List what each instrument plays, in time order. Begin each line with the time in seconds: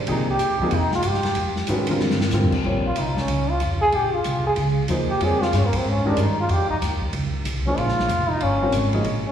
0.07 upright bass C2, grand piano C3 F3 A#3 D#4 G#4, trombone D#4, ride
0.30 trombone G4
0.39 upright bass D#2, hi-hat pedal, ride
0.60 grand piano C3 F3 A#3 D#4 G#4, kick
0.71 upright bass F2, ride
0.76 trombone D#4
0.91 trombone F4, snare
1.02 upright bass G2, hi-hat pedal, ride
1.08 trombone G4
1.14 snare
1.23 snare, ride
1.35 upright bass F2, ride
1.56 snare
1.67 upright bass G#2, grand piano D#3 G#3 C#4 F#4 B4, hi-hat pedal, ride
1.87 grand piano D3 G3 C4, ride
1.91 grand piano F4 A#4
2.00 upright bass G2, snare
2.10 snare
2.21 snare
2.31 upright bass G#2, grand piano D3 G3 C4 F4 A#4, snare, hi-hat pedal
2.43 upright bass F2
2.52 upright bass D#2, kick, crash
2.64 upright bass A#1, grand piano G3 C4 F4 A#4 C#5
2.86 trombone F4
2.96 upright bass C2, trombone D#4, hi-hat pedal, ride
3.17 trombone C#4, snare
3.28 upright bass C#2, ride
3.50 trombone F4
3.60 upright bass F2, hi-hat pedal, ride
3.82 trombone G#4
3.92 upright bass A#1, trombone G4, ride
4.14 trombone F4
4.24 upright bass C2, hi-hat pedal, ride
4.47 trombone G#4
4.56 upright bass C#2, ride
4.88 upright bass D#2, grand piano F3 A#3 D#4 G#4 C5, hi-hat pedal, ride
5.11 trombone G4
5.21 upright bass F2, grand piano G3 C4 F4 A#4 C#5, trombone G#4, ride
5.42 trombone F4, snare
5.53 upright bass G2, trombone C#4, snare, hi-hat pedal, ride
5.67 trombone A#3
5.73 kick, ride
5.78 trombone C4
5.85 upright bass G#2
5.89 trombone C#4
6.05 grand piano D#3 G#3 C#4 G4 A#4, trombone D4
6.17 upright bass G2, hi-hat pedal, ride
6.21 trombone D#4
6.40 trombone F4
6.49 upright bass F2, trombone G4, ride
6.70 trombone D#4, kick
6.81 upright bass D#2, snare, hi-hat pedal, ride
7.02 kick
7.13 upright bass C#2, ride
7.45 upright bass C2, hi-hat pedal, ride
7.67 grand piano F3 A#3 D#4 G#4 C5, trombone C#4
7.77 upright bass A#1, trombone F4, ride
7.88 snare
7.99 snare
8.08 upright bass F1, hi-hat pedal, ride
8.30 trombone D#4
8.40 upright bass G1, trombone C#4, ride
8.62 grand piano G3 C4 F4 A#4 C#5
8.72 upright bass G#1, hi-hat pedal, ride
8.93 grand piano F3 A#3 D#4 G#4 D#5, ride
9.04 upright bass A#1, ride
9.27 trombone C#4